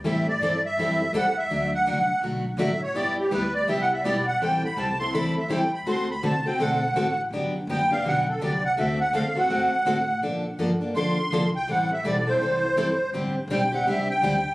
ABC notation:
X:1
M:4/4
L:1/16
Q:"Swing" 1/4=165
K:Ador
V:1 name="Accordion"
e2 d4 e6 f2 e2- | e2 f6 z4 e2 ^c2 | d2 G2 B2 d2 (3e2 f2 e2 d2 f2 | g2 b2 a2 c'2 b2 e2 g2 b2 |
c'2 b2 a2 g2 f6- f z | z4 g2 =f2 ^f2 A2 d2 f2 | e2 f2 =f2 ^f8- f2 | z8 c'6 g2 |
f2 e2 d2 c8- c2 | z4 g2 f2 e2 g6 |]
V:2 name="Steel-string acoustic guitar"
[E,G,CEA]2 z2 [E,G,CEA] z3 [E,G,CEA]2 z2 [E,G,CEA] z3 | [D,F,A,DF]2 z2 [D,F,A,DF] z3 [D,F,A,DF]2 z2 [D,F,A,DF] z3 | [G,B,EG]2 z2 [G,B,EG] z3 [G,B,EG]2 z2 [G,B,EG] z3 | [E,G,CEA]2 z2 [E,G,CEA] z [CEA]2 [E,G,CEA]2 z2 [E,G,CEA] z3 |
[D,A,CFA]2 z2 [D,A,CFA] z [CFA]2 [D,A,CFA]2 z2 [D,A,CFA] z3 | [D,F,B,DG]2 z2 [D,F,B,DG] z [B,DG]2 [D,F,B,DG]2 z2 [D,F,B,DG] z3 | [D,A,CFA]2 z2 [D,A,CFA] z [CFA]2 [D,A,CFA]2 z2 [D,A,CFA] z3 | [D,=F,_B,DA]2 z2 [D,F,B,DA] z [B,DA]2 [D,F,B,DA]2 z2 [D,F,B,DA] z3 |
[E,G,CEA]2 z2 [E,G,CEA] z [CEA]2 [E,G,CEA]2 z2 [E,G,CEA] z3 | [D,G,CDG]2 z2 [D,G,CDG] z [CDG]2 [D,G,CDG]2 z2 [D,G,CDG] z3 |]
V:3 name="Upright bass" clef=bass
A,,4 G,,4 F,,4 E,,4 | D,,4 C,,2 z2 B,,,4 A,,,4 | G,,,4 D,,4 C,,4 B,,,4 | A,,,2 z2 C,,4 D,,4 E,,4 |
D,,4 C,,4 B,,,4 A,,,4 | G,,,2 z2 F,,,4 B,,,4 C,,4 | D,,4 E,,4 F,,2 z2 A,,4 | _B,,4 G,,4 =F,,2 z2 C,,4 |
A,,,4 B,,,4 C,,4 G,,,4 | A,,,2 z2 B,,,4 C,,4 D,,4 |]